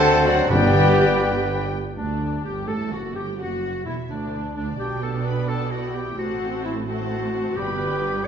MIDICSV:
0, 0, Header, 1, 13, 480
1, 0, Start_track
1, 0, Key_signature, 1, "major"
1, 0, Tempo, 488599
1, 495, Time_signature, 6, 3, 24, 8
1, 1934, Tempo, 472441
1, 4334, Tempo, 461538
1, 8437, End_track
2, 0, Start_track
2, 0, Title_t, "Violin section"
2, 0, Program_c, 0, 48
2, 0, Note_on_c, 0, 81, 124
2, 252, Note_off_c, 0, 81, 0
2, 254, Note_on_c, 0, 78, 109
2, 491, Note_off_c, 0, 78, 0
2, 502, Note_on_c, 0, 79, 115
2, 1676, Note_off_c, 0, 79, 0
2, 1940, Note_on_c, 0, 74, 48
2, 2387, Note_off_c, 0, 74, 0
2, 2425, Note_on_c, 0, 79, 43
2, 2661, Note_off_c, 0, 79, 0
2, 2667, Note_on_c, 0, 81, 52
2, 2897, Note_off_c, 0, 81, 0
2, 2908, Note_on_c, 0, 78, 46
2, 3143, Note_off_c, 0, 78, 0
2, 3146, Note_on_c, 0, 79, 53
2, 3377, Note_off_c, 0, 79, 0
2, 3384, Note_on_c, 0, 78, 51
2, 3849, Note_off_c, 0, 78, 0
2, 3869, Note_on_c, 0, 76, 52
2, 4097, Note_off_c, 0, 76, 0
2, 4105, Note_on_c, 0, 74, 47
2, 4563, Note_off_c, 0, 74, 0
2, 4575, Note_on_c, 0, 74, 59
2, 4810, Note_off_c, 0, 74, 0
2, 4821, Note_on_c, 0, 79, 67
2, 5056, Note_off_c, 0, 79, 0
2, 5057, Note_on_c, 0, 81, 57
2, 5293, Note_on_c, 0, 83, 60
2, 5294, Note_off_c, 0, 81, 0
2, 5533, Note_off_c, 0, 83, 0
2, 5537, Note_on_c, 0, 81, 69
2, 5772, Note_off_c, 0, 81, 0
2, 5786, Note_on_c, 0, 78, 59
2, 6018, Note_off_c, 0, 78, 0
2, 6021, Note_on_c, 0, 79, 62
2, 6261, Note_off_c, 0, 79, 0
2, 6261, Note_on_c, 0, 78, 69
2, 6740, Note_on_c, 0, 76, 60
2, 6741, Note_off_c, 0, 78, 0
2, 6823, Note_off_c, 0, 76, 0
2, 6981, Note_on_c, 0, 78, 64
2, 7685, Note_off_c, 0, 78, 0
2, 7695, Note_on_c, 0, 79, 72
2, 8398, Note_off_c, 0, 79, 0
2, 8437, End_track
3, 0, Start_track
3, 0, Title_t, "Flute"
3, 0, Program_c, 1, 73
3, 0, Note_on_c, 1, 78, 101
3, 252, Note_on_c, 1, 74, 97
3, 267, Note_off_c, 1, 78, 0
3, 488, Note_off_c, 1, 74, 0
3, 493, Note_on_c, 1, 74, 100
3, 1672, Note_off_c, 1, 74, 0
3, 8437, End_track
4, 0, Start_track
4, 0, Title_t, "Oboe"
4, 0, Program_c, 2, 68
4, 0, Note_on_c, 2, 72, 78
4, 482, Note_off_c, 2, 72, 0
4, 488, Note_on_c, 2, 71, 74
4, 1669, Note_off_c, 2, 71, 0
4, 8437, End_track
5, 0, Start_track
5, 0, Title_t, "Violin section"
5, 0, Program_c, 3, 48
5, 0, Note_on_c, 3, 69, 108
5, 243, Note_off_c, 3, 69, 0
5, 250, Note_on_c, 3, 66, 92
5, 494, Note_off_c, 3, 66, 0
5, 495, Note_on_c, 3, 67, 89
5, 1697, Note_off_c, 3, 67, 0
5, 1930, Note_on_c, 3, 62, 50
5, 2382, Note_off_c, 3, 62, 0
5, 2416, Note_on_c, 3, 67, 60
5, 2655, Note_on_c, 3, 69, 64
5, 2657, Note_off_c, 3, 67, 0
5, 2895, Note_on_c, 3, 66, 57
5, 2896, Note_off_c, 3, 69, 0
5, 3134, Note_on_c, 3, 67, 51
5, 3136, Note_off_c, 3, 66, 0
5, 3376, Note_off_c, 3, 67, 0
5, 3382, Note_on_c, 3, 66, 51
5, 3848, Note_off_c, 3, 66, 0
5, 3851, Note_on_c, 3, 64, 61
5, 3933, Note_off_c, 3, 64, 0
5, 4104, Note_on_c, 3, 62, 59
5, 4562, Note_off_c, 3, 62, 0
5, 4574, Note_on_c, 3, 62, 54
5, 4657, Note_off_c, 3, 62, 0
5, 4820, Note_on_c, 3, 79, 43
5, 4824, Note_on_c, 3, 74, 42
5, 6219, Note_off_c, 3, 79, 0
5, 6221, Note_off_c, 3, 74, 0
5, 6257, Note_on_c, 3, 81, 47
5, 6258, Note_on_c, 3, 72, 52
5, 6966, Note_off_c, 3, 81, 0
5, 6972, Note_off_c, 3, 72, 0
5, 6982, Note_on_c, 3, 81, 59
5, 6985, Note_on_c, 3, 72, 56
5, 7686, Note_off_c, 3, 81, 0
5, 7687, Note_off_c, 3, 72, 0
5, 7701, Note_on_c, 3, 83, 60
5, 7703, Note_on_c, 3, 74, 52
5, 8406, Note_off_c, 3, 74, 0
5, 8406, Note_off_c, 3, 83, 0
5, 8437, End_track
6, 0, Start_track
6, 0, Title_t, "Trumpet section"
6, 0, Program_c, 4, 61
6, 0, Note_on_c, 4, 69, 110
6, 244, Note_off_c, 4, 69, 0
6, 254, Note_on_c, 4, 66, 87
6, 363, Note_off_c, 4, 66, 0
6, 499, Note_on_c, 4, 67, 98
6, 1675, Note_off_c, 4, 67, 0
6, 8437, End_track
7, 0, Start_track
7, 0, Title_t, "Clarinet"
7, 0, Program_c, 5, 71
7, 0, Note_on_c, 5, 66, 82
7, 483, Note_off_c, 5, 66, 0
7, 495, Note_on_c, 5, 67, 95
7, 1673, Note_off_c, 5, 67, 0
7, 1930, Note_on_c, 5, 62, 64
7, 2382, Note_off_c, 5, 62, 0
7, 2423, Note_on_c, 5, 67, 58
7, 2655, Note_on_c, 5, 69, 67
7, 2670, Note_off_c, 5, 67, 0
7, 2896, Note_off_c, 5, 69, 0
7, 2904, Note_on_c, 5, 66, 55
7, 3134, Note_off_c, 5, 66, 0
7, 3140, Note_on_c, 5, 67, 64
7, 3247, Note_off_c, 5, 67, 0
7, 3377, Note_on_c, 5, 66, 76
7, 3845, Note_off_c, 5, 66, 0
7, 3855, Note_on_c, 5, 64, 60
7, 3963, Note_off_c, 5, 64, 0
7, 4092, Note_on_c, 5, 62, 54
7, 4565, Note_off_c, 5, 62, 0
7, 4581, Note_on_c, 5, 62, 66
7, 4687, Note_off_c, 5, 62, 0
7, 4812, Note_on_c, 5, 67, 86
7, 5047, Note_off_c, 5, 67, 0
7, 5058, Note_on_c, 5, 69, 63
7, 5291, Note_on_c, 5, 71, 70
7, 5306, Note_off_c, 5, 69, 0
7, 5528, Note_on_c, 5, 69, 76
7, 5544, Note_off_c, 5, 71, 0
7, 5771, Note_on_c, 5, 66, 67
7, 5787, Note_off_c, 5, 69, 0
7, 6014, Note_on_c, 5, 67, 77
7, 6029, Note_off_c, 5, 66, 0
7, 6254, Note_off_c, 5, 67, 0
7, 6260, Note_on_c, 5, 66, 84
7, 6731, Note_off_c, 5, 66, 0
7, 6747, Note_on_c, 5, 64, 63
7, 6854, Note_off_c, 5, 64, 0
7, 6986, Note_on_c, 5, 66, 78
7, 7702, Note_on_c, 5, 67, 100
7, 7717, Note_off_c, 5, 66, 0
7, 8427, Note_off_c, 5, 67, 0
7, 8437, End_track
8, 0, Start_track
8, 0, Title_t, "Viola section"
8, 0, Program_c, 6, 48
8, 0, Note_on_c, 6, 69, 85
8, 243, Note_off_c, 6, 69, 0
8, 253, Note_on_c, 6, 66, 90
8, 490, Note_off_c, 6, 66, 0
8, 496, Note_on_c, 6, 67, 111
8, 1673, Note_off_c, 6, 67, 0
8, 1931, Note_on_c, 6, 62, 57
8, 2382, Note_off_c, 6, 62, 0
8, 2411, Note_on_c, 6, 67, 56
8, 2492, Note_off_c, 6, 67, 0
8, 2657, Note_on_c, 6, 69, 56
8, 2739, Note_off_c, 6, 69, 0
8, 2891, Note_on_c, 6, 66, 49
8, 2973, Note_off_c, 6, 66, 0
8, 3129, Note_on_c, 6, 67, 53
8, 3369, Note_off_c, 6, 67, 0
8, 3383, Note_on_c, 6, 66, 59
8, 3847, Note_on_c, 6, 64, 56
8, 3858, Note_off_c, 6, 66, 0
8, 3928, Note_off_c, 6, 64, 0
8, 4088, Note_on_c, 6, 62, 49
8, 4558, Note_off_c, 6, 62, 0
8, 4570, Note_on_c, 6, 62, 60
8, 4793, Note_off_c, 6, 62, 0
8, 4803, Note_on_c, 6, 59, 54
8, 4806, Note_on_c, 6, 62, 52
8, 5728, Note_off_c, 6, 62, 0
8, 5772, Note_on_c, 6, 64, 52
8, 6211, Note_off_c, 6, 59, 0
8, 6251, Note_on_c, 6, 60, 61
8, 6255, Note_on_c, 6, 66, 58
8, 6257, Note_off_c, 6, 64, 0
8, 6963, Note_off_c, 6, 60, 0
8, 6965, Note_off_c, 6, 66, 0
8, 6982, Note_on_c, 6, 60, 49
8, 6985, Note_on_c, 6, 66, 52
8, 7685, Note_off_c, 6, 60, 0
8, 7687, Note_off_c, 6, 66, 0
8, 7702, Note_on_c, 6, 59, 62
8, 7702, Note_on_c, 6, 71, 67
8, 8390, Note_off_c, 6, 59, 0
8, 8390, Note_off_c, 6, 71, 0
8, 8403, Note_on_c, 6, 59, 62
8, 8403, Note_on_c, 6, 71, 63
8, 8437, Note_off_c, 6, 59, 0
8, 8437, Note_off_c, 6, 71, 0
8, 8437, End_track
9, 0, Start_track
9, 0, Title_t, "Bassoon"
9, 0, Program_c, 7, 70
9, 0, Note_on_c, 7, 60, 104
9, 484, Note_off_c, 7, 60, 0
9, 490, Note_on_c, 7, 59, 100
9, 1553, Note_off_c, 7, 59, 0
9, 8437, End_track
10, 0, Start_track
10, 0, Title_t, "French horn section"
10, 0, Program_c, 8, 60
10, 0, Note_on_c, 8, 57, 112
10, 243, Note_off_c, 8, 57, 0
10, 257, Note_on_c, 8, 54, 97
10, 497, Note_off_c, 8, 54, 0
10, 501, Note_on_c, 8, 55, 96
10, 1700, Note_off_c, 8, 55, 0
10, 8437, End_track
11, 0, Start_track
11, 0, Title_t, "Cello section"
11, 0, Program_c, 10, 48
11, 0, Note_on_c, 10, 50, 91
11, 459, Note_off_c, 10, 50, 0
11, 494, Note_on_c, 10, 43, 76
11, 1707, Note_off_c, 10, 43, 0
11, 1938, Note_on_c, 10, 38, 49
11, 2386, Note_off_c, 10, 38, 0
11, 2419, Note_on_c, 10, 43, 55
11, 2651, Note_on_c, 10, 45, 63
11, 2653, Note_off_c, 10, 43, 0
11, 2894, Note_off_c, 10, 45, 0
11, 2896, Note_on_c, 10, 42, 52
11, 3137, Note_off_c, 10, 42, 0
11, 3138, Note_on_c, 10, 43, 54
11, 3378, Note_off_c, 10, 43, 0
11, 3379, Note_on_c, 10, 42, 49
11, 3855, Note_off_c, 10, 42, 0
11, 3860, Note_on_c, 10, 40, 47
11, 3941, Note_off_c, 10, 40, 0
11, 4092, Note_on_c, 10, 38, 55
11, 4565, Note_off_c, 10, 38, 0
11, 4579, Note_on_c, 10, 38, 53
11, 4812, Note_off_c, 10, 38, 0
11, 4817, Note_on_c, 10, 47, 46
11, 6217, Note_off_c, 10, 47, 0
11, 6258, Note_on_c, 10, 45, 53
11, 7693, Note_on_c, 10, 43, 55
11, 7699, Note_off_c, 10, 45, 0
11, 8437, Note_off_c, 10, 43, 0
11, 8437, End_track
12, 0, Start_track
12, 0, Title_t, "Timpani"
12, 0, Program_c, 11, 47
12, 494, Note_on_c, 11, 43, 118
12, 1181, Note_off_c, 11, 43, 0
12, 7696, Note_on_c, 11, 43, 71
12, 8371, Note_off_c, 11, 43, 0
12, 8437, End_track
13, 0, Start_track
13, 0, Title_t, "Double bass section"
13, 0, Program_c, 12, 48
13, 0, Note_on_c, 12, 38, 97
13, 457, Note_off_c, 12, 38, 0
13, 499, Note_on_c, 12, 31, 90
13, 1710, Note_off_c, 12, 31, 0
13, 1932, Note_on_c, 12, 38, 57
13, 2383, Note_off_c, 12, 38, 0
13, 2420, Note_on_c, 12, 31, 56
13, 2653, Note_off_c, 12, 31, 0
13, 2659, Note_on_c, 12, 33, 62
13, 2893, Note_on_c, 12, 30, 53
13, 2898, Note_off_c, 12, 33, 0
13, 3136, Note_off_c, 12, 30, 0
13, 3136, Note_on_c, 12, 31, 55
13, 3377, Note_off_c, 12, 31, 0
13, 3377, Note_on_c, 12, 30, 55
13, 3852, Note_on_c, 12, 28, 49
13, 3855, Note_off_c, 12, 30, 0
13, 3933, Note_off_c, 12, 28, 0
13, 4089, Note_on_c, 12, 38, 59
13, 4564, Note_off_c, 12, 38, 0
13, 4581, Note_on_c, 12, 38, 55
13, 4813, Note_off_c, 12, 38, 0
13, 4815, Note_on_c, 12, 35, 55
13, 6217, Note_off_c, 12, 35, 0
13, 6259, Note_on_c, 12, 33, 61
13, 7700, Note_off_c, 12, 33, 0
13, 7704, Note_on_c, 12, 31, 68
13, 8437, Note_off_c, 12, 31, 0
13, 8437, End_track
0, 0, End_of_file